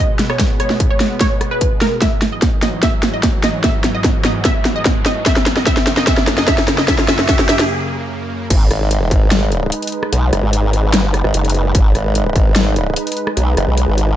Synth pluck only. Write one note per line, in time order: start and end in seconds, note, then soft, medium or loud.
0.00 0.22 D#5 loud
0.30 0.53 C#5 medium
0.60 0.83 C#5 medium
0.90 1.14 C#5 medium
1.21 1.44 C#5 loud
1.51 1.74 B4 loud
1.81 1.97 A#4 medium
2.02 2.25 E5 medium
2.32 2.56 D#5 medium
2.62 2.81 D#5 medium
2.83 3.06 E5 medium
3.14 3.37 D#5 medium
3.44 3.62 D#5 medium
3.64 3.87 E5 medium
3.95 4.18 D#5 medium
4.25 4.43 D#5 medium
4.45 4.68 E5 loud
4.76 4.99 D#5 medium
5.06 5.25 D#5 medium
5.26 5.49 E5 medium
5.57 5.65 D#5 medium
5.67 5.90 E5 loud
5.97 6.06 D#5 loud
6.07 6.30 E5 loud
6.38 6.46 D#5 loud
6.48 6.71 E5 loud
6.78 6.87 D#5 medium
6.88 7.07 E5 medium
7.08 7.27 E5 loud
7.29 7.47 E5 loud
7.49 7.68 E5 loud